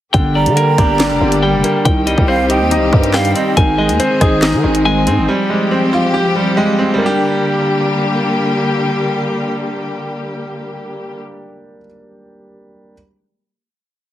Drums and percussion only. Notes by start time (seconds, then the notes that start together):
0.14 kick, closed hi-hat
0.46 closed hi-hat
0.57 closed hi-hat
0.78 kick, cross-stick, closed hi-hat
0.99 snare, clap, closed hi-hat
1.32 closed hi-hat
1.64 closed hi-hat
1.85 kick, closed hi-hat
2.07 closed hi-hat
2.18 kick
2.50 closed hi-hat
2.71 closed hi-hat
2.93 kick
3.03 closed hi-hat
3.14 cross-stick, snare, clap
3.25 closed hi-hat
3.36 closed hi-hat
3.57 kick, closed hi-hat
3.89 closed hi-hat
4.00 closed hi-hat
4.21 kick, cross-stick, closed hi-hat
4.42 snare, clap, closed hi-hat
4.75 closed hi-hat
5.07 closed hi-hat